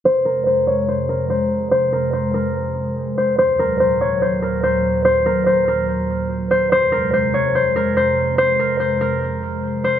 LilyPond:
<<
  \new Staff \with { instrumentName = "Harp" } { \time 4/4 \key f \phrygian \tempo 4 = 144 c''8 bes'8 c''8 des''8 c''8 bes'8 c''8 r8 | c''8 bes'8 c''8 bes'2 c''8 | c''8 bes'8 c''8 des''8 c''8 bes'8 c''8 r8 | c''8 bes'8 c''8 bes'2 c''8 |
c''8 bes'8 c''8 des''8 c''8 bes'8 c''8 r8 | c''8 bes'8 c''8 bes'2 c''8 | }
  \new Staff \with { instrumentName = "Analog synth pad" } { \clef bass \time 4/4 \key f \phrygian <f, c aes>1~ | <f, c aes>1 | <ees, bes, ges>1~ | <ees, bes, ges>1 |
<f, c aes>1~ | <f, c aes>1 | }
>>